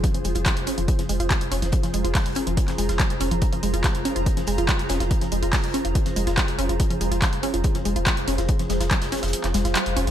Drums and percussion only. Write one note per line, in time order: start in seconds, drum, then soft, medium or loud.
0.04 kick loud
0.04 closed hi-hat medium
0.14 closed hi-hat medium
0.24 closed hi-hat medium
0.24 open hi-hat loud
0.35 closed hi-hat soft
0.35 closed hi-hat medium
0.45 kick loud
0.45 snare loud
0.45 clap loud
0.45 closed hi-hat medium
0.57 closed hi-hat medium
0.67 closed hi-hat medium
0.67 open hi-hat medium
0.78 closed hi-hat medium
0.88 kick loud
0.88 closed hi-hat medium
0.98 snare soft
0.98 closed hi-hat medium
1.09 closed hi-hat medium
1.09 open hi-hat loud
1.20 closed hi-hat medium
1.20 closed hi-hat soft
1.30 kick loud
1.30 snare loud
1.30 clap loud
1.30 closed hi-hat medium
1.41 closed hi-hat soft
1.41 closed hi-hat medium
1.51 closed hi-hat medium
1.51 open hi-hat loud
1.62 snare medium
1.62 closed hi-hat medium
1.72 kick loud
1.72 closed hi-hat medium
1.83 snare soft
1.83 closed hi-hat medium
1.94 closed hi-hat medium
1.94 open hi-hat loud
2.05 closed hi-hat medium
2.15 kick loud
2.15 snare loud
2.15 clap loud
2.15 closed hi-hat medium
2.15 open hi-hat medium
2.26 closed hi-hat medium
2.35 closed hi-hat medium
2.35 open hi-hat medium
2.47 closed hi-hat medium
2.57 kick loud
2.57 closed hi-hat medium
2.68 snare medium
2.68 clap soft
2.68 closed hi-hat medium
2.78 closed hi-hat medium
2.78 open hi-hat loud
2.89 snare medium
2.89 closed hi-hat soft
2.99 kick loud
2.99 snare loud
2.99 clap loud
2.99 closed hi-hat medium
3.10 snare soft
3.10 closed hi-hat medium
3.20 closed hi-hat medium
3.20 open hi-hat loud
3.31 closed hi-hat medium
3.42 kick loud
3.42 closed hi-hat medium
3.53 closed hi-hat soft
3.63 closed hi-hat medium
3.63 open hi-hat loud
3.74 closed hi-hat medium
3.74 closed hi-hat soft
3.84 kick loud
3.84 snare loud
3.84 clap loud
3.84 closed hi-hat medium
3.95 closed hi-hat medium
4.05 closed hi-hat medium
4.05 open hi-hat medium
4.16 closed hi-hat medium
4.26 kick loud
4.26 closed hi-hat medium
4.37 snare soft
4.37 closed hi-hat medium
4.47 closed hi-hat medium
4.47 open hi-hat loud
4.58 closed hi-hat soft
4.68 kick loud
4.68 snare loud
4.68 clap loud
4.68 closed hi-hat medium
4.79 closed hi-hat medium
4.79 closed hi-hat soft
4.89 snare loud
4.89 closed hi-hat medium
4.89 open hi-hat loud
5.00 snare medium
5.00 closed hi-hat medium
5.11 kick loud
5.11 closed hi-hat medium
5.21 snare soft
5.21 closed hi-hat medium
5.32 closed hi-hat medium
5.32 open hi-hat loud
5.43 closed hi-hat medium
5.53 kick loud
5.53 snare loud
5.53 clap loud
5.53 closed hi-hat medium
5.53 open hi-hat medium
5.64 closed hi-hat soft
5.74 closed hi-hat medium
5.74 open hi-hat medium
5.85 closed hi-hat soft
5.95 kick loud
5.95 closed hi-hat medium
6.06 snare medium
6.06 closed hi-hat soft
6.16 closed hi-hat medium
6.16 open hi-hat loud
6.27 snare medium
6.27 closed hi-hat medium
6.38 kick loud
6.38 snare loud
6.38 clap loud
6.38 closed hi-hat medium
6.48 snare soft
6.48 closed hi-hat medium
6.59 closed hi-hat medium
6.59 open hi-hat medium
6.69 closed hi-hat soft
6.80 kick loud
6.80 closed hi-hat medium
6.80 closed hi-hat loud
6.90 closed hi-hat medium
7.01 closed hi-hat medium
7.01 open hi-hat loud
7.12 closed hi-hat soft
7.12 closed hi-hat medium
7.22 kick loud
7.22 snare loud
7.22 clap loud
7.22 closed hi-hat medium
7.33 closed hi-hat soft
7.43 closed hi-hat medium
7.43 open hi-hat medium
7.54 closed hi-hat medium
7.64 kick loud
7.64 closed hi-hat medium
7.75 snare soft
7.75 closed hi-hat medium
7.85 closed hi-hat medium
7.85 open hi-hat loud
7.96 closed hi-hat soft
7.96 closed hi-hat medium
8.06 kick loud
8.06 snare loud
8.06 clap loud
8.06 closed hi-hat medium
8.06 closed hi-hat loud
8.17 closed hi-hat medium
8.17 closed hi-hat soft
8.28 closed hi-hat medium
8.28 open hi-hat loud
8.38 snare medium
8.38 closed hi-hat medium
8.48 kick loud
8.48 closed hi-hat medium
8.59 snare soft
8.59 closed hi-hat medium
8.70 snare loud
8.70 closed hi-hat medium
8.70 open hi-hat loud
8.80 snare loud
8.80 closed hi-hat medium
8.91 kick loud
8.91 snare loud
8.91 clap loud
8.91 closed hi-hat medium
9.02 snare loud
9.02 closed hi-hat medium
9.12 snare medium
9.12 closed hi-hat medium
9.12 open hi-hat medium
9.17 snare medium
9.17 closed hi-hat medium
9.23 snare medium
9.23 closed hi-hat medium
9.28 snare medium
9.28 closed hi-hat medium
9.33 closed hi-hat medium
9.44 snare medium
9.44 clap soft
9.44 closed hi-hat medium
9.54 snare loud
9.54 closed hi-hat medium
9.54 open hi-hat loud
9.65 snare medium
9.65 closed hi-hat medium
9.75 snare loud
9.75 clap loud
9.75 closed hi-hat medium
9.85 snare soft
9.85 closed hi-hat medium
9.97 closed hi-hat medium
9.97 open hi-hat loud
10.07 closed hi-hat medium